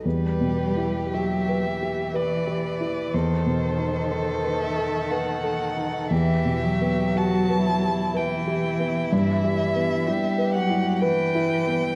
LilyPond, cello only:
\new Staff \with { instrumentName = "Cello" } { \clef bass \time 3/4 \key e \minor \tempo 4 = 61 g4 fis8 e4. | dis2. | e8 fis4. e4 | e4 g8 fis8 e4 | }